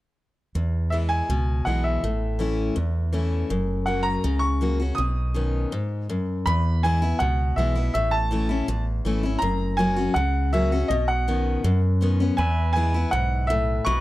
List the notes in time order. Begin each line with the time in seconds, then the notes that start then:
0.55 E2
0.90 E3 G#3 B3 E4 E5
1.09 G#5
1.29 C#2 B2
1.65 B1 E3 G#3 B3 E4 F#5
1.84 E5
2.03 A1 A2
2.39 E3 A3 C#4 E4
2.76 E2
3.13 E3 A3 C#4 E4
3.50 F#1 F#2
3.86 F#3 A#3 C#4 F#4 F#5
4.03 A#5
4.24 C#2 C#3
4.39 C#6
4.61 F#3 A#3 C#4 F#4
4.80 C#4 F#4
4.95 B1 B2 D#6
5.34 B2 D#3 B3 C#4
5.72 G#2
6.09 F#2
6.46 E2 B5
6.83 E3 G#3 B3 E4 G#5
7.02 B3 E4
7.19 C#2 B2 F#5
7.56 B1 E3 G#3 B3 E4 E5
7.75 B3 E4
7.94 A1 A2 E5
8.11 A5
8.31 E3 A3 C#4 E4
8.49 C#4 E4
8.68 A1 E2
9.05 G#1 E3 A3 C#4 E4
9.23 C#4 E4
9.39 F#1 F#2 A#5
9.77 F#3 A#3 C#4 F#4 G#5
9.96 C#4 F#4
10.14 C#2 C#3 F#5
10.53 F#3 A#3 C#4 F#4 E5
10.72 C#4 F#4
10.88 B1 B2 D#5
11.08 F#5
11.28 B2 D#3 B3 C#4
11.64 F#2
12.01 B2 D#3 B3 C#4
12.20 B3 C#4
12.37 E2 B4 E5 G#5
12.73 E3 G#3 G#5
12.77 B3 E4
12.94 B3 E4
13.11 B1 G#2 F#5
13.47 A2 E5
13.85 B1 B2 B4 D#5 C#6